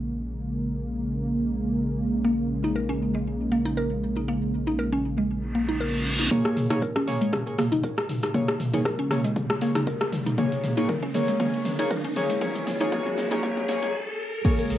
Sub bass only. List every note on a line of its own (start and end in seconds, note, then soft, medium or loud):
0.00 6.29 A#1 medium
6.57 7.13 A#1 medium
7.21 7.29 A#2 medium
7.59 8.02 A#1 medium
8.09 8.53 A#1 medium
8.60 9.16 A#1 loud
9.25 9.32 A#2 loud
10.64 11.20 A#1 loud
11.28 11.35 A#2 loud
14.70 14.78 A#1 loud